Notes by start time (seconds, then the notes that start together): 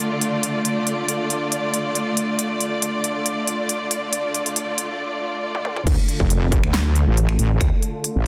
Already playing: D3 A3 F4 D5
0.21 closed hi-hat
0.43 closed hi-hat
0.65 closed hi-hat
0.87 closed hi-hat
1.08 closed hi-hat
1.30 closed hi-hat
1.52 closed hi-hat
1.74 closed hi-hat
1.95 closed hi-hat
2.17 closed hi-hat
2.39 closed hi-hat
2.61 closed hi-hat
2.82 closed hi-hat
3.04 closed hi-hat
3.26 closed hi-hat
3.47 closed hi-hat
3.69 closed hi-hat
3.91 closed hi-hat
4.13 closed hi-hat
4.34 closed hi-hat
4.46 closed hi-hat
4.56 closed hi-hat
4.78 closed hi-hat
5.55 high tom
5.65 mid tom
5.76 mid tom
5.87 D2 D3 A3 F4 A4, kick, closed hi-hat, crash
6.08 closed hi-hat
6.20 F1, kick
6.30 closed hi-hat
6.52 kick, closed hi-hat
6.64 D2, finger snap
6.74 snare, clap, closed hi-hat
6.95 closed hi-hat
7.07 A1
7.17 closed hi-hat
7.29 finger snap
7.39 A1, closed hi-hat
7.61 D2, finger snap, kick, closed hi-hat
7.82 closed hi-hat
8.04 closed hi-hat
8.16 A1